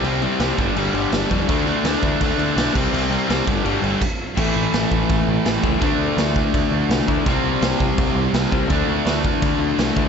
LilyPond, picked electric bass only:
\new Staff \with { instrumentName = "Picked electric bass" } { \clef bass \time 4/4 \key d \dorian \tempo 4 = 166 c,4 c,8 g,,8 g,,8 g,,8 g,,8 f,8 | d,4 d,8 d,8 d,8 d,8 b,,8 c,8 | c,4 c,8 g,,8 g,,8 g,,8 r4 | a,,8 a,,8 a,,8 a,,8 a,,8 a,,8 a,,8 cis,8 |
d,8 d,8 d,4 d,8 d,8 c,8 d,8 | c,8 c,8 c,8 c,8 c,8 c,8 c,8 c,8 | d,8 d,8 d,4 d,8 d,8 c,8 d,8 | }